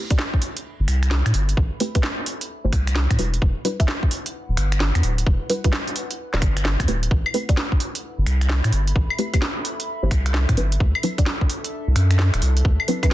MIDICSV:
0, 0, Header, 1, 5, 480
1, 0, Start_track
1, 0, Tempo, 461538
1, 1635, Time_signature, 4, 2, 24, 8
1, 13665, End_track
2, 0, Start_track
2, 0, Title_t, "Ambient pad"
2, 0, Program_c, 0, 92
2, 0, Note_on_c, 0, 69, 91
2, 0, Note_on_c, 0, 76, 73
2, 0, Note_on_c, 0, 83, 87
2, 3317, Note_on_c, 0, 64, 85
2, 3637, Note_on_c, 0, 78, 86
2, 3850, Note_on_c, 0, 71, 71
2, 4119, Note_off_c, 0, 76, 0
2, 4251, Note_off_c, 0, 69, 0
2, 4707, Note_off_c, 0, 83, 0
2, 7396, Note_on_c, 0, 69, 78
2, 8048, Note_on_c, 0, 76, 82
2, 8195, Note_on_c, 0, 83, 81
2, 8551, Note_off_c, 0, 64, 0
2, 8811, Note_off_c, 0, 78, 0
2, 8960, Note_off_c, 0, 71, 0
2, 11233, Note_on_c, 0, 62, 76
2, 11909, Note_off_c, 0, 83, 0
2, 13665, Note_off_c, 0, 62, 0
2, 13665, Note_off_c, 0, 69, 0
2, 13665, Note_off_c, 0, 76, 0
2, 13665, End_track
3, 0, Start_track
3, 0, Title_t, "Synth stab"
3, 0, Program_c, 1, 62
3, 108, Note_on_c, 1, 57, 84
3, 108, Note_on_c, 1, 60, 75
3, 108, Note_on_c, 1, 64, 77
3, 108, Note_on_c, 1, 67, 76
3, 109, Note_on_c, 1, 74, 91
3, 183, Note_off_c, 1, 57, 0
3, 183, Note_off_c, 1, 60, 0
3, 183, Note_off_c, 1, 64, 0
3, 183, Note_off_c, 1, 67, 0
3, 183, Note_off_c, 1, 74, 0
3, 1875, Note_on_c, 1, 64, 87
3, 1875, Note_on_c, 1, 67, 84
3, 1875, Note_on_c, 1, 71, 96
3, 1876, Note_on_c, 1, 57, 91
3, 1876, Note_on_c, 1, 60, 84
3, 2006, Note_off_c, 1, 71, 0
3, 2007, Note_off_c, 1, 57, 0
3, 2007, Note_off_c, 1, 60, 0
3, 2007, Note_off_c, 1, 64, 0
3, 2007, Note_off_c, 1, 67, 0
3, 2029, Note_on_c, 1, 57, 94
3, 2029, Note_on_c, 1, 60, 86
3, 2029, Note_on_c, 1, 64, 88
3, 2029, Note_on_c, 1, 67, 89
3, 2029, Note_on_c, 1, 71, 105
3, 2712, Note_off_c, 1, 57, 0
3, 2712, Note_off_c, 1, 60, 0
3, 2712, Note_off_c, 1, 64, 0
3, 2712, Note_off_c, 1, 67, 0
3, 2712, Note_off_c, 1, 71, 0
3, 2749, Note_on_c, 1, 57, 78
3, 2749, Note_on_c, 1, 60, 67
3, 2749, Note_on_c, 1, 64, 69
3, 2749, Note_on_c, 1, 67, 67
3, 2749, Note_on_c, 1, 72, 81
3, 2823, Note_off_c, 1, 57, 0
3, 2823, Note_off_c, 1, 60, 0
3, 2823, Note_off_c, 1, 64, 0
3, 2823, Note_off_c, 1, 67, 0
3, 2823, Note_off_c, 1, 72, 0
3, 3314, Note_on_c, 1, 66, 80
3, 3315, Note_on_c, 1, 55, 86
3, 3315, Note_on_c, 1, 62, 79
3, 3315, Note_on_c, 1, 64, 79
3, 3315, Note_on_c, 1, 71, 92
3, 3774, Note_off_c, 1, 55, 0
3, 3774, Note_off_c, 1, 62, 0
3, 3774, Note_off_c, 1, 64, 0
3, 3774, Note_off_c, 1, 66, 0
3, 3774, Note_off_c, 1, 71, 0
3, 3794, Note_on_c, 1, 55, 97
3, 3794, Note_on_c, 1, 62, 89
3, 3794, Note_on_c, 1, 64, 91
3, 3794, Note_on_c, 1, 66, 87
3, 3794, Note_on_c, 1, 71, 108
3, 3926, Note_off_c, 1, 55, 0
3, 3926, Note_off_c, 1, 62, 0
3, 3926, Note_off_c, 1, 64, 0
3, 3926, Note_off_c, 1, 66, 0
3, 3926, Note_off_c, 1, 71, 0
3, 3948, Note_on_c, 1, 64, 78
3, 3949, Note_on_c, 1, 55, 84
3, 3949, Note_on_c, 1, 62, 73
3, 3949, Note_on_c, 1, 66, 78
3, 3949, Note_on_c, 1, 76, 94
3, 4023, Note_off_c, 1, 55, 0
3, 4023, Note_off_c, 1, 62, 0
3, 4023, Note_off_c, 1, 64, 0
3, 4023, Note_off_c, 1, 66, 0
3, 4023, Note_off_c, 1, 76, 0
3, 5716, Note_on_c, 1, 55, 92
3, 5716, Note_on_c, 1, 62, 85
3, 5716, Note_on_c, 1, 64, 85
3, 5716, Note_on_c, 1, 66, 85
3, 5716, Note_on_c, 1, 71, 98
3, 5847, Note_off_c, 1, 55, 0
3, 5847, Note_off_c, 1, 62, 0
3, 5847, Note_off_c, 1, 64, 0
3, 5847, Note_off_c, 1, 66, 0
3, 5847, Note_off_c, 1, 71, 0
3, 5871, Note_on_c, 1, 55, 95
3, 5872, Note_on_c, 1, 62, 88
3, 5872, Note_on_c, 1, 64, 85
3, 5872, Note_on_c, 1, 66, 90
3, 5872, Note_on_c, 1, 71, 105
3, 6553, Note_off_c, 1, 55, 0
3, 6553, Note_off_c, 1, 62, 0
3, 6553, Note_off_c, 1, 66, 0
3, 6553, Note_off_c, 1, 71, 0
3, 6554, Note_off_c, 1, 64, 0
3, 6590, Note_on_c, 1, 55, 75
3, 6591, Note_on_c, 1, 62, 69
3, 6591, Note_on_c, 1, 64, 71
3, 6591, Note_on_c, 1, 66, 69
3, 6591, Note_on_c, 1, 74, 82
3, 6664, Note_off_c, 1, 55, 0
3, 6664, Note_off_c, 1, 62, 0
3, 6664, Note_off_c, 1, 64, 0
3, 6664, Note_off_c, 1, 66, 0
3, 6664, Note_off_c, 1, 74, 0
3, 7154, Note_on_c, 1, 57, 89
3, 7154, Note_on_c, 1, 64, 79
3, 7155, Note_on_c, 1, 60, 78
3, 7155, Note_on_c, 1, 67, 80
3, 7155, Note_on_c, 1, 71, 98
3, 7614, Note_off_c, 1, 57, 0
3, 7614, Note_off_c, 1, 60, 0
3, 7614, Note_off_c, 1, 64, 0
3, 7614, Note_off_c, 1, 67, 0
3, 7614, Note_off_c, 1, 71, 0
3, 7634, Note_on_c, 1, 57, 98
3, 7634, Note_on_c, 1, 60, 90
3, 7634, Note_on_c, 1, 64, 86
3, 7634, Note_on_c, 1, 67, 88
3, 7634, Note_on_c, 1, 71, 107
3, 7766, Note_off_c, 1, 57, 0
3, 7766, Note_off_c, 1, 60, 0
3, 7766, Note_off_c, 1, 64, 0
3, 7766, Note_off_c, 1, 67, 0
3, 7766, Note_off_c, 1, 71, 0
3, 7789, Note_on_c, 1, 57, 84
3, 7789, Note_on_c, 1, 60, 73
3, 7789, Note_on_c, 1, 64, 75
3, 7789, Note_on_c, 1, 67, 75
3, 7789, Note_on_c, 1, 74, 91
3, 7863, Note_off_c, 1, 57, 0
3, 7863, Note_off_c, 1, 60, 0
3, 7863, Note_off_c, 1, 64, 0
3, 7863, Note_off_c, 1, 67, 0
3, 7863, Note_off_c, 1, 74, 0
3, 9554, Note_on_c, 1, 64, 84
3, 9554, Note_on_c, 1, 67, 85
3, 9554, Note_on_c, 1, 71, 102
3, 9555, Note_on_c, 1, 57, 92
3, 9555, Note_on_c, 1, 60, 83
3, 9686, Note_off_c, 1, 57, 0
3, 9686, Note_off_c, 1, 60, 0
3, 9686, Note_off_c, 1, 64, 0
3, 9686, Note_off_c, 1, 67, 0
3, 9686, Note_off_c, 1, 71, 0
3, 9709, Note_on_c, 1, 57, 94
3, 9710, Note_on_c, 1, 60, 88
3, 9710, Note_on_c, 1, 64, 90
3, 9710, Note_on_c, 1, 67, 89
3, 9710, Note_on_c, 1, 71, 102
3, 10392, Note_off_c, 1, 57, 0
3, 10393, Note_off_c, 1, 60, 0
3, 10393, Note_off_c, 1, 64, 0
3, 10393, Note_off_c, 1, 67, 0
3, 10393, Note_off_c, 1, 71, 0
3, 10430, Note_on_c, 1, 57, 74
3, 10430, Note_on_c, 1, 60, 69
3, 10430, Note_on_c, 1, 64, 67
3, 10430, Note_on_c, 1, 67, 71
3, 10430, Note_on_c, 1, 72, 83
3, 10504, Note_off_c, 1, 57, 0
3, 10504, Note_off_c, 1, 60, 0
3, 10504, Note_off_c, 1, 64, 0
3, 10504, Note_off_c, 1, 67, 0
3, 10504, Note_off_c, 1, 72, 0
3, 10996, Note_on_c, 1, 54, 84
3, 10996, Note_on_c, 1, 60, 82
3, 10996, Note_on_c, 1, 62, 79
3, 10996, Note_on_c, 1, 64, 79
3, 10996, Note_on_c, 1, 71, 96
3, 11455, Note_off_c, 1, 54, 0
3, 11455, Note_off_c, 1, 60, 0
3, 11455, Note_off_c, 1, 62, 0
3, 11455, Note_off_c, 1, 64, 0
3, 11455, Note_off_c, 1, 71, 0
3, 11476, Note_on_c, 1, 60, 91
3, 11476, Note_on_c, 1, 62, 91
3, 11477, Note_on_c, 1, 54, 97
3, 11477, Note_on_c, 1, 64, 89
3, 11477, Note_on_c, 1, 71, 105
3, 11607, Note_off_c, 1, 54, 0
3, 11607, Note_off_c, 1, 60, 0
3, 11607, Note_off_c, 1, 62, 0
3, 11607, Note_off_c, 1, 64, 0
3, 11607, Note_off_c, 1, 71, 0
3, 11631, Note_on_c, 1, 54, 87
3, 11631, Note_on_c, 1, 60, 74
3, 11631, Note_on_c, 1, 62, 75
3, 11631, Note_on_c, 1, 64, 76
3, 11631, Note_on_c, 1, 74, 90
3, 11704, Note_off_c, 1, 54, 0
3, 11704, Note_off_c, 1, 60, 0
3, 11704, Note_off_c, 1, 62, 0
3, 11704, Note_off_c, 1, 64, 0
3, 11704, Note_off_c, 1, 74, 0
3, 13396, Note_on_c, 1, 54, 93
3, 13396, Note_on_c, 1, 62, 84
3, 13397, Note_on_c, 1, 60, 85
3, 13397, Note_on_c, 1, 64, 85
3, 13397, Note_on_c, 1, 71, 103
3, 13527, Note_off_c, 1, 54, 0
3, 13527, Note_off_c, 1, 60, 0
3, 13527, Note_off_c, 1, 62, 0
3, 13527, Note_off_c, 1, 64, 0
3, 13527, Note_off_c, 1, 71, 0
3, 13551, Note_on_c, 1, 62, 86
3, 13552, Note_on_c, 1, 54, 96
3, 13552, Note_on_c, 1, 60, 87
3, 13552, Note_on_c, 1, 64, 83
3, 13552, Note_on_c, 1, 71, 107
3, 13665, Note_off_c, 1, 54, 0
3, 13665, Note_off_c, 1, 60, 0
3, 13665, Note_off_c, 1, 62, 0
3, 13665, Note_off_c, 1, 64, 0
3, 13665, Note_off_c, 1, 71, 0
3, 13665, End_track
4, 0, Start_track
4, 0, Title_t, "Sub bass"
4, 0, Program_c, 2, 38
4, 830, Note_on_c, 2, 31, 88
4, 904, Note_off_c, 2, 31, 0
4, 914, Note_on_c, 2, 36, 93
4, 1277, Note_off_c, 2, 36, 0
4, 1308, Note_on_c, 2, 45, 85
4, 1383, Note_off_c, 2, 45, 0
4, 1395, Note_on_c, 2, 31, 86
4, 1613, Note_off_c, 2, 31, 0
4, 1635, Note_on_c, 2, 33, 96
4, 1769, Note_off_c, 2, 33, 0
4, 2749, Note_on_c, 2, 31, 87
4, 2824, Note_off_c, 2, 31, 0
4, 2835, Note_on_c, 2, 36, 96
4, 3198, Note_off_c, 2, 36, 0
4, 3230, Note_on_c, 2, 45, 83
4, 3304, Note_off_c, 2, 45, 0
4, 3314, Note_on_c, 2, 28, 89
4, 3532, Note_off_c, 2, 28, 0
4, 3555, Note_on_c, 2, 28, 97
4, 3690, Note_off_c, 2, 28, 0
4, 4668, Note_on_c, 2, 26, 88
4, 4743, Note_off_c, 2, 26, 0
4, 4754, Note_on_c, 2, 31, 94
4, 5117, Note_off_c, 2, 31, 0
4, 5149, Note_on_c, 2, 40, 86
4, 5224, Note_off_c, 2, 40, 0
4, 5234, Note_on_c, 2, 26, 91
4, 5453, Note_off_c, 2, 26, 0
4, 5475, Note_on_c, 2, 28, 99
4, 5610, Note_off_c, 2, 28, 0
4, 6590, Note_on_c, 2, 26, 90
4, 6664, Note_off_c, 2, 26, 0
4, 6675, Note_on_c, 2, 31, 98
4, 7038, Note_off_c, 2, 31, 0
4, 7070, Note_on_c, 2, 40, 83
4, 7144, Note_off_c, 2, 40, 0
4, 7154, Note_on_c, 2, 26, 92
4, 7372, Note_off_c, 2, 26, 0
4, 7395, Note_on_c, 2, 33, 99
4, 7530, Note_off_c, 2, 33, 0
4, 8509, Note_on_c, 2, 31, 86
4, 8584, Note_off_c, 2, 31, 0
4, 8594, Note_on_c, 2, 36, 96
4, 8957, Note_off_c, 2, 36, 0
4, 8990, Note_on_c, 2, 45, 87
4, 9064, Note_off_c, 2, 45, 0
4, 9075, Note_on_c, 2, 31, 90
4, 9293, Note_off_c, 2, 31, 0
4, 9314, Note_on_c, 2, 33, 98
4, 9449, Note_off_c, 2, 33, 0
4, 10429, Note_on_c, 2, 31, 92
4, 10504, Note_off_c, 2, 31, 0
4, 10515, Note_on_c, 2, 36, 99
4, 10878, Note_off_c, 2, 36, 0
4, 10910, Note_on_c, 2, 45, 82
4, 10984, Note_off_c, 2, 45, 0
4, 10995, Note_on_c, 2, 31, 90
4, 11213, Note_off_c, 2, 31, 0
4, 11235, Note_on_c, 2, 38, 100
4, 11370, Note_off_c, 2, 38, 0
4, 12350, Note_on_c, 2, 36, 86
4, 12424, Note_off_c, 2, 36, 0
4, 12436, Note_on_c, 2, 42, 97
4, 12798, Note_off_c, 2, 42, 0
4, 12830, Note_on_c, 2, 26, 89
4, 12905, Note_off_c, 2, 26, 0
4, 12917, Note_on_c, 2, 36, 89
4, 13134, Note_off_c, 2, 36, 0
4, 13155, Note_on_c, 2, 38, 96
4, 13290, Note_off_c, 2, 38, 0
4, 13665, End_track
5, 0, Start_track
5, 0, Title_t, "Drums"
5, 109, Note_on_c, 9, 42, 63
5, 110, Note_on_c, 9, 36, 108
5, 194, Note_on_c, 9, 38, 115
5, 213, Note_off_c, 9, 42, 0
5, 214, Note_off_c, 9, 36, 0
5, 298, Note_off_c, 9, 38, 0
5, 350, Note_on_c, 9, 36, 56
5, 434, Note_on_c, 9, 46, 108
5, 454, Note_off_c, 9, 36, 0
5, 538, Note_off_c, 9, 46, 0
5, 589, Note_on_c, 9, 42, 63
5, 693, Note_off_c, 9, 42, 0
5, 914, Note_on_c, 9, 26, 55
5, 914, Note_on_c, 9, 46, 107
5, 1018, Note_off_c, 9, 26, 0
5, 1018, Note_off_c, 9, 46, 0
5, 1068, Note_on_c, 9, 26, 68
5, 1068, Note_on_c, 9, 42, 62
5, 1154, Note_on_c, 9, 38, 114
5, 1172, Note_off_c, 9, 26, 0
5, 1172, Note_off_c, 9, 42, 0
5, 1258, Note_off_c, 9, 38, 0
5, 1309, Note_on_c, 9, 26, 69
5, 1309, Note_on_c, 9, 42, 50
5, 1393, Note_on_c, 9, 46, 109
5, 1413, Note_off_c, 9, 26, 0
5, 1413, Note_off_c, 9, 42, 0
5, 1497, Note_off_c, 9, 46, 0
5, 1548, Note_on_c, 9, 42, 62
5, 1635, Note_on_c, 9, 36, 112
5, 1652, Note_off_c, 9, 42, 0
5, 1739, Note_off_c, 9, 36, 0
5, 1874, Note_on_c, 9, 46, 105
5, 1978, Note_off_c, 9, 46, 0
5, 2028, Note_on_c, 9, 42, 60
5, 2029, Note_on_c, 9, 36, 105
5, 2113, Note_on_c, 9, 38, 121
5, 2132, Note_off_c, 9, 42, 0
5, 2133, Note_off_c, 9, 36, 0
5, 2217, Note_off_c, 9, 38, 0
5, 2354, Note_on_c, 9, 46, 106
5, 2458, Note_off_c, 9, 46, 0
5, 2509, Note_on_c, 9, 42, 62
5, 2613, Note_off_c, 9, 42, 0
5, 2835, Note_on_c, 9, 26, 58
5, 2835, Note_on_c, 9, 36, 107
5, 2835, Note_on_c, 9, 46, 104
5, 2939, Note_off_c, 9, 26, 0
5, 2939, Note_off_c, 9, 36, 0
5, 2939, Note_off_c, 9, 46, 0
5, 2989, Note_on_c, 9, 26, 64
5, 2989, Note_on_c, 9, 42, 60
5, 3074, Note_on_c, 9, 38, 117
5, 3093, Note_off_c, 9, 26, 0
5, 3093, Note_off_c, 9, 42, 0
5, 3178, Note_off_c, 9, 38, 0
5, 3230, Note_on_c, 9, 26, 68
5, 3230, Note_on_c, 9, 36, 61
5, 3230, Note_on_c, 9, 42, 51
5, 3315, Note_on_c, 9, 46, 102
5, 3334, Note_off_c, 9, 26, 0
5, 3334, Note_off_c, 9, 36, 0
5, 3334, Note_off_c, 9, 42, 0
5, 3419, Note_off_c, 9, 46, 0
5, 3470, Note_on_c, 9, 42, 65
5, 3555, Note_on_c, 9, 36, 118
5, 3574, Note_off_c, 9, 42, 0
5, 3659, Note_off_c, 9, 36, 0
5, 3795, Note_on_c, 9, 46, 104
5, 3899, Note_off_c, 9, 46, 0
5, 3950, Note_on_c, 9, 36, 104
5, 3951, Note_on_c, 9, 42, 61
5, 4035, Note_on_c, 9, 38, 120
5, 4054, Note_off_c, 9, 36, 0
5, 4055, Note_off_c, 9, 42, 0
5, 4139, Note_off_c, 9, 38, 0
5, 4190, Note_on_c, 9, 36, 62
5, 4275, Note_on_c, 9, 46, 102
5, 4294, Note_off_c, 9, 36, 0
5, 4379, Note_off_c, 9, 46, 0
5, 4430, Note_on_c, 9, 42, 61
5, 4534, Note_off_c, 9, 42, 0
5, 4756, Note_on_c, 9, 26, 55
5, 4756, Note_on_c, 9, 46, 104
5, 4860, Note_off_c, 9, 26, 0
5, 4860, Note_off_c, 9, 46, 0
5, 4911, Note_on_c, 9, 26, 66
5, 4911, Note_on_c, 9, 42, 60
5, 4995, Note_on_c, 9, 38, 125
5, 5015, Note_off_c, 9, 26, 0
5, 5015, Note_off_c, 9, 42, 0
5, 5099, Note_off_c, 9, 38, 0
5, 5150, Note_on_c, 9, 26, 65
5, 5150, Note_on_c, 9, 42, 49
5, 5235, Note_on_c, 9, 46, 97
5, 5254, Note_off_c, 9, 26, 0
5, 5254, Note_off_c, 9, 42, 0
5, 5339, Note_off_c, 9, 46, 0
5, 5391, Note_on_c, 9, 42, 62
5, 5476, Note_on_c, 9, 36, 118
5, 5495, Note_off_c, 9, 42, 0
5, 5580, Note_off_c, 9, 36, 0
5, 5716, Note_on_c, 9, 46, 104
5, 5820, Note_off_c, 9, 46, 0
5, 5870, Note_on_c, 9, 36, 104
5, 5870, Note_on_c, 9, 42, 64
5, 5955, Note_on_c, 9, 38, 116
5, 5974, Note_off_c, 9, 36, 0
5, 5974, Note_off_c, 9, 42, 0
5, 6059, Note_off_c, 9, 38, 0
5, 6110, Note_on_c, 9, 42, 36
5, 6196, Note_on_c, 9, 46, 100
5, 6214, Note_off_c, 9, 42, 0
5, 6300, Note_off_c, 9, 46, 0
5, 6350, Note_on_c, 9, 42, 61
5, 6454, Note_off_c, 9, 42, 0
5, 6590, Note_on_c, 9, 38, 64
5, 6675, Note_on_c, 9, 26, 54
5, 6675, Note_on_c, 9, 36, 107
5, 6675, Note_on_c, 9, 46, 96
5, 6694, Note_off_c, 9, 38, 0
5, 6779, Note_off_c, 9, 26, 0
5, 6779, Note_off_c, 9, 36, 0
5, 6779, Note_off_c, 9, 46, 0
5, 6830, Note_on_c, 9, 26, 63
5, 6830, Note_on_c, 9, 42, 62
5, 6915, Note_on_c, 9, 38, 116
5, 6934, Note_off_c, 9, 26, 0
5, 6934, Note_off_c, 9, 42, 0
5, 7019, Note_off_c, 9, 38, 0
5, 7070, Note_on_c, 9, 36, 59
5, 7071, Note_on_c, 9, 26, 65
5, 7071, Note_on_c, 9, 42, 52
5, 7156, Note_on_c, 9, 46, 93
5, 7174, Note_off_c, 9, 36, 0
5, 7175, Note_off_c, 9, 26, 0
5, 7175, Note_off_c, 9, 42, 0
5, 7260, Note_off_c, 9, 46, 0
5, 7311, Note_on_c, 9, 42, 64
5, 7395, Note_on_c, 9, 36, 113
5, 7415, Note_off_c, 9, 42, 0
5, 7499, Note_off_c, 9, 36, 0
5, 7551, Note_on_c, 9, 75, 81
5, 7635, Note_on_c, 9, 46, 100
5, 7655, Note_off_c, 9, 75, 0
5, 7739, Note_off_c, 9, 46, 0
5, 7789, Note_on_c, 9, 36, 104
5, 7789, Note_on_c, 9, 42, 62
5, 7876, Note_on_c, 9, 38, 117
5, 7893, Note_off_c, 9, 36, 0
5, 7893, Note_off_c, 9, 42, 0
5, 7980, Note_off_c, 9, 38, 0
5, 8029, Note_on_c, 9, 36, 59
5, 8115, Note_on_c, 9, 46, 102
5, 8133, Note_off_c, 9, 36, 0
5, 8219, Note_off_c, 9, 46, 0
5, 8269, Note_on_c, 9, 42, 65
5, 8373, Note_off_c, 9, 42, 0
5, 8596, Note_on_c, 9, 26, 52
5, 8596, Note_on_c, 9, 46, 98
5, 8700, Note_off_c, 9, 26, 0
5, 8700, Note_off_c, 9, 46, 0
5, 8750, Note_on_c, 9, 26, 61
5, 8750, Note_on_c, 9, 42, 62
5, 8835, Note_on_c, 9, 38, 116
5, 8854, Note_off_c, 9, 26, 0
5, 8854, Note_off_c, 9, 42, 0
5, 8939, Note_off_c, 9, 38, 0
5, 8988, Note_on_c, 9, 26, 64
5, 8988, Note_on_c, 9, 42, 49
5, 9075, Note_on_c, 9, 46, 96
5, 9092, Note_off_c, 9, 26, 0
5, 9092, Note_off_c, 9, 42, 0
5, 9179, Note_off_c, 9, 46, 0
5, 9230, Note_on_c, 9, 42, 64
5, 9314, Note_on_c, 9, 36, 108
5, 9334, Note_off_c, 9, 42, 0
5, 9418, Note_off_c, 9, 36, 0
5, 9468, Note_on_c, 9, 75, 79
5, 9553, Note_on_c, 9, 46, 105
5, 9572, Note_off_c, 9, 75, 0
5, 9657, Note_off_c, 9, 46, 0
5, 9709, Note_on_c, 9, 36, 96
5, 9709, Note_on_c, 9, 42, 68
5, 9709, Note_on_c, 9, 75, 60
5, 9794, Note_on_c, 9, 38, 110
5, 9813, Note_off_c, 9, 36, 0
5, 9813, Note_off_c, 9, 42, 0
5, 9813, Note_off_c, 9, 75, 0
5, 9898, Note_off_c, 9, 38, 0
5, 10035, Note_on_c, 9, 46, 102
5, 10139, Note_off_c, 9, 46, 0
5, 10190, Note_on_c, 9, 42, 65
5, 10294, Note_off_c, 9, 42, 0
5, 10515, Note_on_c, 9, 26, 52
5, 10515, Note_on_c, 9, 36, 97
5, 10515, Note_on_c, 9, 46, 97
5, 10619, Note_off_c, 9, 26, 0
5, 10619, Note_off_c, 9, 36, 0
5, 10619, Note_off_c, 9, 46, 0
5, 10669, Note_on_c, 9, 26, 61
5, 10669, Note_on_c, 9, 42, 66
5, 10754, Note_on_c, 9, 38, 108
5, 10773, Note_off_c, 9, 26, 0
5, 10773, Note_off_c, 9, 42, 0
5, 10858, Note_off_c, 9, 38, 0
5, 10909, Note_on_c, 9, 26, 61
5, 10909, Note_on_c, 9, 42, 51
5, 10910, Note_on_c, 9, 36, 58
5, 10995, Note_on_c, 9, 46, 100
5, 11013, Note_off_c, 9, 26, 0
5, 11013, Note_off_c, 9, 42, 0
5, 11014, Note_off_c, 9, 36, 0
5, 11099, Note_off_c, 9, 46, 0
5, 11150, Note_on_c, 9, 42, 68
5, 11235, Note_on_c, 9, 36, 112
5, 11254, Note_off_c, 9, 42, 0
5, 11339, Note_off_c, 9, 36, 0
5, 11390, Note_on_c, 9, 75, 76
5, 11474, Note_on_c, 9, 46, 108
5, 11494, Note_off_c, 9, 75, 0
5, 11578, Note_off_c, 9, 46, 0
5, 11630, Note_on_c, 9, 36, 98
5, 11630, Note_on_c, 9, 42, 66
5, 11715, Note_on_c, 9, 38, 106
5, 11734, Note_off_c, 9, 36, 0
5, 11734, Note_off_c, 9, 42, 0
5, 11819, Note_off_c, 9, 38, 0
5, 11870, Note_on_c, 9, 36, 58
5, 11956, Note_on_c, 9, 46, 113
5, 11974, Note_off_c, 9, 36, 0
5, 12060, Note_off_c, 9, 46, 0
5, 12111, Note_on_c, 9, 42, 68
5, 12215, Note_off_c, 9, 42, 0
5, 12436, Note_on_c, 9, 26, 53
5, 12436, Note_on_c, 9, 46, 105
5, 12540, Note_off_c, 9, 26, 0
5, 12540, Note_off_c, 9, 46, 0
5, 12591, Note_on_c, 9, 26, 64
5, 12591, Note_on_c, 9, 42, 64
5, 12676, Note_on_c, 9, 38, 114
5, 12695, Note_off_c, 9, 26, 0
5, 12695, Note_off_c, 9, 42, 0
5, 12780, Note_off_c, 9, 38, 0
5, 12831, Note_on_c, 9, 26, 63
5, 12831, Note_on_c, 9, 42, 57
5, 12916, Note_on_c, 9, 46, 106
5, 12935, Note_off_c, 9, 26, 0
5, 12935, Note_off_c, 9, 42, 0
5, 13020, Note_off_c, 9, 46, 0
5, 13070, Note_on_c, 9, 42, 69
5, 13155, Note_on_c, 9, 36, 111
5, 13174, Note_off_c, 9, 42, 0
5, 13259, Note_off_c, 9, 36, 0
5, 13311, Note_on_c, 9, 75, 74
5, 13396, Note_on_c, 9, 46, 109
5, 13415, Note_off_c, 9, 75, 0
5, 13500, Note_off_c, 9, 46, 0
5, 13550, Note_on_c, 9, 36, 103
5, 13552, Note_on_c, 9, 42, 66
5, 13552, Note_on_c, 9, 75, 58
5, 13654, Note_off_c, 9, 36, 0
5, 13656, Note_off_c, 9, 42, 0
5, 13656, Note_off_c, 9, 75, 0
5, 13665, End_track
0, 0, End_of_file